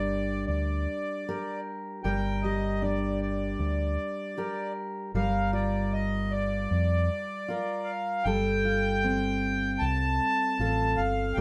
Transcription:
Already playing: G1 G3 D4 G4 A#4 D5
0.47 D2 D5
1.29 G4 A#4
2.03 G1 G3 A#4 G5
2.42 G4 D#5
2.82 D4 D5
3.22 D5
3.59 D2
4.38 G4 A#4
5.14 G1 G3 A#4 F5
5.53 F4 D5
5.93 D#5
6.31 D5
6.71 F2
7.48 F4 A#4
7.84 F5
8.24 G1 G3 A4 G5
8.65 F4
9.04 C4
9.79 C2 A5
10.59 A1 F4 A4
10.97 G1 F5
11.34 G1 G3 G5

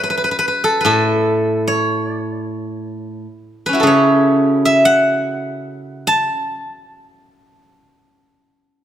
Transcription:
Already playing: C#5 E5
0.03 B4
0.10 B4
0.17 B4
0.24 B4
0.31 B4
0.39 B4
0.48 B4
0.64 A4
0.81 B4
0.85 A2 A4
1.68 C#5
3.66 C#4 B4
3.73 E4 F#4
3.80 C#3 A4 B4
3.87 C#5
4.65 E5
4.85 F#5
6.07 A5

